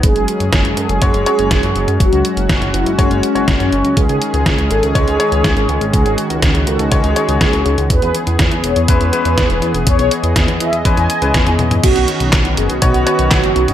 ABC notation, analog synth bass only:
X:1
M:4/4
L:1/16
Q:1/4=122
K:E
V:1 name="Analog synth bass" clef=bass
F,,, F,,, z F,,, F,,, F,,, F,, F,,, F,,, F,,, z F,,, F,,, F,, F,,, F,, | F,,, C,, z F,,, F,,, F,,, F,,, F,,, F,,, F,,, z F,,, F,,, F,, F,,, C,, | C,, C,, z C,, C,, C,, G,,, C,, C,, C,, z C,, C,, G,,, C,, G,,, | C,, G,,, z C,, C,, C,, C,, C,, C,, C,, z C,, C,, C,, C,, C,, |
E,, E,, z E,, E,, E,, E,,, E,, E,, E,, z E,, E,, E,,, E,, E,,, | E,, B,,, z E,, E,, E,, E,, E,, E,, E,, z C,, E,, E,, E,, E,, | B,,, B,,, z B,,, B,,, B,,, F,,, B,,, B,,, B,,, z B,,, B,,, F,,, B,,, F,,, |]